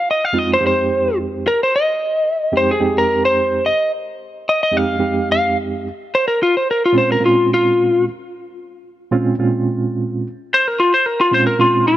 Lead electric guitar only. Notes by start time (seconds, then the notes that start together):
0.11 D#5
0.25 F5
0.39 D#5
0.54 C5
0.67 C5
1.48 A#4
1.63 C5
1.76 D#5
2.57 C5
2.71 G#4
2.98 A#4
3.25 C5
3.66 D#5
4.49 D#5
4.63 D#5
4.77 F5
5.32 F5
6.15 C5
6.28 A#4
6.43 F4
6.57 C5
6.71 A#4
6.86 F4
6.98 C5
7.12 A#4
7.26 F4
7.54 F4
10.54 C5
10.68 A#4
10.80 F4
10.94 C5
11.06 A#4
11.21 F4
11.34 C5
11.47 A#4
11.61 F4
11.88 F4